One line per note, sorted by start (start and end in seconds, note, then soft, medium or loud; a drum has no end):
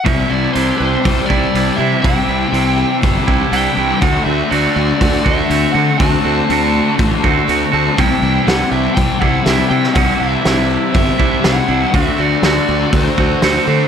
0.04 0.21 C2 medium
0.04 0.55 C3 medium
0.04 0.59 C3 medium
0.04 0.55 E3 medium
0.04 0.29 E3 medium
0.04 0.56 G3 medium
0.04 0.32 G3 medium
0.04 0.57 C4 medium
0.04 0.31 D4 medium
0.04 0.29 E4 loud
0.04 0.31 E5 medium
0.04 kick medium
0.04 open hi-hat soft
0.30 0.46 C2 medium
0.30 1.54 E3 medium
0.30 0.55 G3 medium
0.30 0.56 D4 medium
0.30 0.56 E4 medium
0.30 0.53 D5 medium
0.53 0.70 C2 medium
0.53 1.03 C3 medium
0.53 1.53 E3 medium
0.53 1.30 G3 medium
0.53 1.04 G3 medium
0.53 1.05 C4 medium
0.53 1.30 D4 medium
0.53 1.28 E4 medium
0.53 0.77 C5 medium
0.53 open hi-hat soft
0.57 1.06 C4 medium
0.78 0.95 C2 medium
0.78 1.29 G4 medium
0.78 1.25 C5 medium
1.04 1.20 C2 medium
1.04 2.01 C3 medium
1.04 1.78 G3 medium
1.04 2.53 C4 medium
1.04 1.77 C4 medium
1.04 kick medium
1.04 open hi-hat soft
1.26 1.56 E4 medium
1.26 1.79 D5 medium
1.30 1.45 C2 medium
1.30 1.54 G3 soft
1.30 1.56 D4 medium
1.30 2.53 G4 medium
1.30 kick medium
1.54 1.69 C2 medium
1.54 2.03 E3 medium
1.54 1.80 G3 medium
1.54 3.05 D4 medium
1.54 1.80 D4 medium
1.54 1.78 E4 medium
1.54 open hi-hat soft
1.76 1.94 C3 medium
1.76 2.03 E3 medium
1.76 2.02 G3 medium
1.76 2.04 C4 medium
1.76 2.05 E4 medium
1.76 2.01 E5 medium
1.80 2.04 G3 soft
1.80 2.05 D4 medium
2.02 2.19 C2 medium
2.02 2.51 C3 medium
2.02 2.53 C3 medium
2.02 2.52 E3 medium
2.02 2.28 E3 medium
2.02 2.52 G3 medium
2.02 2.29 G3 medium
2.02 2.53 C4 medium
2.02 2.98 G5 medium
2.02 kick loud
2.02 open hi-hat soft
2.06 2.29 D4 medium
2.06 2.26 E4 loud
2.27 2.43 C2 medium
2.27 3.52 E3 medium
2.27 2.53 G3 medium
2.27 2.55 D4 medium
2.27 2.55 E4 medium
2.52 2.83 C2 medium
2.52 3.00 C3 medium
2.52 3.51 E3 medium
2.52 3.01 G3 medium
2.52 3.28 G3 medium
2.52 3.03 C4 medium
2.52 3.02 C4 medium
2.52 3.28 D4 medium
2.52 open hi-hat soft
2.56 3.26 E4 medium
2.78 3.26 G4 medium
3.02 3.18 G1 medium
3.02 4.00 C3 medium
3.02 3.77 G3 medium
3.02 4.01 C4 medium
3.02 3.75 C4 medium
3.02 kick medium
3.02 open hi-hat soft
3.27 3.43 C2 medium
3.27 3.52 G3 medium
3.27 3.53 D4 medium
3.27 3.53 E4 medium
3.27 4.01 G4 medium
3.27 kick medium
3.52 3.67 C2 medium
3.52 4.00 E3 medium
3.52 3.78 G3 medium
3.52 5.50 D4 medium
3.52 3.78 D4 medium
3.52 3.76 E4 medium
3.52 4.01 G5 medium
3.52 open hi-hat soft
3.76 3.92 C2 medium
3.76 4.02 E3 medium
3.76 4.00 G3 medium
3.76 4.01 G3 soft
3.76 4.02 C4 medium
3.76 4.02 D4 medium
3.76 4.00 E4 medium
4.00 4.17 D2 medium
4.00 4.51 D3 medium
4.00 4.49 D3 medium
4.00 4.25 A3 medium
4.00 4.27 A3 medium
4.00 4.52 A3 medium
4.00 4.25 C4 loud
4.00 4.52 D4 medium
4.00 4.24 F#4 loud
4.00 4.24 F#5 medium
4.00 kick medium
4.00 open hi-hat soft
4.25 4.41 D2 medium
4.25 4.50 A3 medium
4.25 4.51 C4 medium
4.25 4.51 F#4 medium
4.25 4.51 E5 medium
4.49 4.66 D2 medium
4.49 5.48 D3 medium
4.49 4.99 D3 medium
4.49 5.26 A3 medium
4.49 5.00 A3 medium
4.49 5.26 C4 medium
4.49 5.02 D4 medium
4.49 5.23 F#4 medium
4.49 4.74 D5 medium
4.49 open hi-hat soft
4.75 4.91 D2 medium
4.75 5.24 F#4 medium
4.75 5.27 D5 medium
5.00 5.16 D2 medium
5.00 5.98 D3 medium
5.00 5.74 A3 medium
5.00 5.75 A3 medium
5.00 5.74 D4 loud
5.00 kick medium
5.00 open hi-hat soft
5.23 5.41 D2 medium
5.23 5.51 C4 medium
5.23 5.50 F#4 medium
5.23 6.49 F#4 medium
5.23 5.72 E5 medium
5.23 kick medium
5.27 5.48 A3 soft
5.49 5.65 D2 medium
5.49 5.98 D3 medium
5.49 5.75 A3 medium
5.49 6.77 C4 medium
5.49 5.75 C4 medium
5.49 5.73 F#4 medium
5.49 open hi-hat soft
5.73 5.90 D3 medium
5.73 5.98 A3 medium
5.73 5.99 A3 medium
5.73 6.00 A3 medium
5.73 6.01 C4 medium
5.73 6.00 D4 medium
5.73 6.01 F#4 medium
5.73 5.99 F#5 medium
5.98 6.15 D2 medium
5.98 6.47 D3 medium
5.98 6.48 D3 medium
5.98 6.23 A3 medium
5.98 6.49 A3 medium
5.98 6.26 A3 medium
5.98 6.25 C4 medium
5.98 6.50 D4 medium
5.98 6.94 A5 medium
5.98 kick loud
5.98 open hi-hat soft
6.02 6.23 F#4 loud
6.24 6.39 D2 medium
6.24 6.49 A3 medium
6.24 6.51 C4 medium
6.24 6.51 F#4 medium
6.49 6.80 D2 medium
6.49 6.97 D3 medium
6.49 7.47 D3 medium
6.49 6.97 A3 medium
6.49 6.98 A3 medium
6.49 7.24 A3 medium
6.49 7.24 C4 medium
6.49 6.99 D4 medium
6.49 7.22 F#4 medium
6.49 open hi-hat soft
6.74 7.22 F#4 medium
6.98 7.14 A1 medium
6.98 7.96 D3 medium
6.98 7.72 A3 medium
6.98 7.72 D4 medium
6.98 kick medium
6.98 open hi-hat soft
7.23 7.39 D2 medium
7.23 7.48 A3 soft
7.23 7.49 C4 soft
7.23 7.49 F#4 medium
7.23 7.98 F#4 medium
7.23 kick medium
7.48 7.63 D2 medium
7.48 7.96 D3 medium
7.48 7.74 A3 medium
7.48 8.47 C4 medium
7.48 7.73 C4 medium
7.48 7.71 F#4 medium
7.48 open hi-hat soft
7.72 7.88 D2 medium
7.72 7.98 A3 medium
7.72 7.96 A3 medium
7.72 7.97 A3 soft
7.72 7.99 C4 medium
7.72 7.98 D4 medium
7.72 7.96 F#4 medium
7.72 7.99 A5 medium
7.97 8.13 C2 medium
7.97 8.45 C3 medium
7.97 8.51 C3 medium
7.97 8.21 E3 medium
7.97 8.46 E3 medium
7.97 8.46 G3 medium
7.97 8.25 G3 medium
7.97 8.47 C4 medium
7.97 8.24 D4 loud
7.97 8.22 E4 loud
7.97 8.44 G5 medium
7.97 kick medium
7.97 open hi-hat soft
8.22 8.37 C2 medium
8.22 9.46 E3 medium
8.22 8.47 G3 soft
8.22 8.48 D4 medium
8.22 8.48 E4 medium
8.46 8.62 C2 medium
8.46 8.93 C3 medium
8.46 9.46 E3 medium
8.46 8.95 G3 medium
8.46 9.23 G3 medium
8.46 8.96 C4 medium
8.46 9.22 D4 medium
8.46 9.20 E4 medium
8.46 8.71 F#5 medium
8.46 snare medium
8.46 open hi-hat soft
8.71 8.87 C2 medium
8.71 9.20 G4 medium
8.71 8.94 E5 medium
8.95 9.12 C2 medium
8.95 9.93 C3 medium
8.95 9.71 G3 medium
8.95 10.45 C4 medium
8.95 9.70 C4 medium
8.95 9.19 G5 medium
8.95 kick medium
8.95 open hi-hat soft
9.20 9.37 C2 medium
9.20 9.48 D4 soft
9.20 9.48 E4 medium
9.20 10.45 G4 medium
9.20 9.44 F#5 medium
9.20 kick medium
9.24 9.47 G3 medium
9.44 9.61 C2 medium
9.44 9.95 E3 medium
9.44 9.72 G3 medium
9.44 10.98 D4 medium
9.44 9.69 E5 medium
9.44 snare medium
9.44 open hi-hat soft
9.49 9.72 D4 medium
9.49 9.69 E4 medium
9.70 9.86 C3 medium
9.70 9.95 E3 medium
9.70 9.94 G3 medium
9.70 9.95 G3 soft
9.70 9.96 C4 medium
9.70 9.97 D4 medium
9.70 9.96 E4 medium
9.70 9.94 G5 medium
9.84 snare soft
9.94 10.11 C2 medium
9.94 10.43 C3 medium
9.94 10.45 C3 medium
9.94 10.44 E3 medium
9.94 10.19 E3 medium
9.94 10.44 G3 medium
9.94 10.21 G3 medium
9.94 10.46 C4 loud
9.94 10.20 D4 loud
9.94 10.19 E4 medium
9.94 10.19 F#5 medium
9.94 kick loud
9.94 open hi-hat soft
10.19 10.35 C2 medium
10.19 11.44 E3 medium
10.19 10.44 G3 medium
10.19 10.46 D4 medium
10.19 10.46 E4 medium
10.19 10.66 E5 medium
10.44 10.76 C2 medium
10.44 10.92 C3 medium
10.44 11.42 E3 medium
10.44 10.93 G3 medium
10.44 11.20 G3 medium
10.44 10.95 C4 medium
10.44 11.20 D4 medium
10.44 11.18 E4 medium
10.44 snare loud
10.44 open hi-hat soft
10.70 11.19 G4 medium
10.94 11.10 G1 medium
10.94 11.92 C3 medium
10.94 11.68 G3 medium
10.94 11.93 C4 medium
10.94 11.67 C4 medium
10.94 11.45 E5 medium
10.94 kick medium
10.94 open hi-hat soft
11.19 11.35 C2 medium
11.19 11.43 G3 soft
11.19 11.44 D4 medium
11.19 11.44 E4 medium
11.19 11.94 G4 medium
11.19 kick medium
11.44 11.59 C2 medium
11.44 11.92 E3 medium
11.44 11.70 G3 medium
11.44 11.70 D4 medium
11.44 13.42 D4 medium
11.44 11.68 E4 medium
11.44 11.95 F#5 medium
11.44 snare loud
11.44 open hi-hat soft
11.68 11.84 C2 medium
11.68 11.94 E3 medium
11.68 11.92 G3 medium
11.68 11.94 G3 soft
11.68 11.94 C4 medium
11.68 11.94 D4 medium
11.68 11.92 E4 medium
11.92 12.09 D2 medium
11.92 12.42 D3 medium
11.92 12.43 A3 medium
11.92 12.18 A3 medium
11.92 12.20 A3 medium
11.92 12.19 C4 loud
11.92 12.44 D4 medium
11.92 12.18 F#4 loud
11.92 12.20 E5 medium
11.92 kick medium
11.92 open hi-hat soft
12.18 12.34 D2 medium
12.18 12.43 A3 medium
12.18 12.44 C4 medium
12.18 12.45 F#4 medium
12.18 12.44 D5 medium
12.42 12.58 D2 medium
12.42 12.91 D3 medium
12.42 13.41 D3 medium
12.42 13.20 A3 medium
12.42 12.92 A3 medium
12.42 13.19 C4 medium
12.42 12.93 D4 medium
12.42 13.17 F#4 medium
12.42 12.95 D5 medium
12.42 snare medium
12.42 open hi-hat soft
12.68 12.84 D2 medium
12.68 13.17 F#4 medium
12.92 13.08 D2 medium
12.92 13.88 D3 medium
12.92 13.66 A3 medium
12.92 13.68 A3 loud
12.92 13.65 D4 medium
12.92 13.88 C5 medium
12.92 kick medium
12.92 open hi-hat soft
13.18 13.33 D2 medium
13.18 13.42 A3 soft
13.18 13.44 C4 medium
13.18 13.43 F#4 medium
13.18 13.88 F#4 medium
13.18 kick medium
13.42 13.58 D2 medium
13.42 13.88 D3 medium
13.42 13.69 A3 medium
13.42 13.88 C4 medium
13.42 13.68 C4 medium
13.42 13.66 F#4 medium
13.42 snare medium
13.42 open hi-hat soft
13.66 13.82 D3 medium
13.66 13.88 A3 medium
13.66 13.88 C4 medium
13.66 13.88 D4 medium
13.66 13.88 F#4 medium